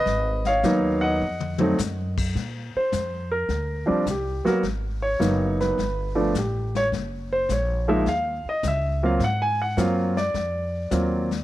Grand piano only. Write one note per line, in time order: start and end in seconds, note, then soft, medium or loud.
0.00 0.42 B4 medium
0.00 0.48 D#5 loud
0.47 1.00 C#5 medium
0.47 0.99 F5 medium
0.64 1.21 F#3 medium
0.64 1.20 A#3 medium
0.64 1.21 B3 medium
0.64 1.21 D#4 medium
1.01 2.13 D#5 medium
1.01 2.12 F#5 medium
1.59 1.75 F#3 medium
1.59 1.76 A3 medium
1.59 1.76 C4 medium
1.59 1.76 D#4 medium
2.77 3.29 C5 medium
3.32 4.02 A#4 medium
3.86 4.03 F3 medium
3.86 4.04 G3 medium
3.86 4.03 C4 medium
3.86 4.04 D4 medium
4.11 4.47 G4 medium
4.45 4.61 F#3 medium
4.45 4.61 A#3 medium
4.45 4.61 B3 medium
4.45 4.61 F#4 medium
4.45 4.64 A#4 medium
5.02 5.56 C#5 medium
5.19 5.77 F#3 medium
5.19 5.77 A#3 medium
5.19 5.77 B3 medium
5.19 5.78 D#4 medium
5.61 6.31 B4 medium
6.15 6.32 F3 medium
6.15 6.32 A3 medium
6.15 6.32 B3 medium
6.15 6.33 D4 medium
6.38 6.75 G4 medium
6.77 6.87 C#5 loud
7.33 7.49 C5 medium
7.52 7.89 C#5 medium
7.88 8.04 F3 medium
7.88 8.05 G#3 medium
7.88 8.05 A#3 medium
7.88 8.05 D#4 medium
7.88 8.06 E5 medium
8.08 8.46 F5 medium
8.49 8.65 D#5 medium
8.68 9.04 E5 medium
9.03 9.19 F#3 medium
9.03 9.19 A#3 medium
9.03 9.19 C4 medium
9.03 9.19 F4 medium
9.03 9.22 F5 medium
9.24 9.41 F#5 medium
9.42 9.59 G#5 medium
9.62 9.79 F#5 medium
9.77 10.13 F#3 medium
9.77 10.13 A#3 medium
9.77 10.13 C4 medium
9.77 10.14 F4 medium
9.77 10.17 F5 medium
10.17 11.36 D5 medium
10.91 11.27 F#3 medium
10.91 11.27 A#3 medium
10.91 11.27 C4 soft
10.91 11.27 F4 medium